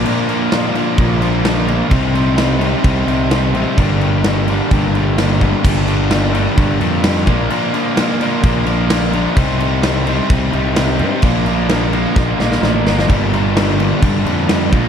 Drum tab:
CC |x-x-x-x-x-x-x-x-|x-x-x-x-x-x-x-x-|x-x-x-x-x-x-x-x-|x-x-x-x-x-x-x-x-|
SD |----o-------o---|----o-------o---|----o-------o---|----o-------o---|
BD |--------o-------|o-------o-------|o-------o-----o-|o-------o-----o-|

CC |x-x-x-x-x-x-x-x-|x-x-x-x-x-x-x-x-|x-x-x-x---------|x-x-x-x-x-x-x-x-|
SD |----o-------o---|----o-------o---|----o---o-ooo-oo|----o-------o---|
BD |--------o-------|o-------o-------|o-------o-------|o-------o-----o-|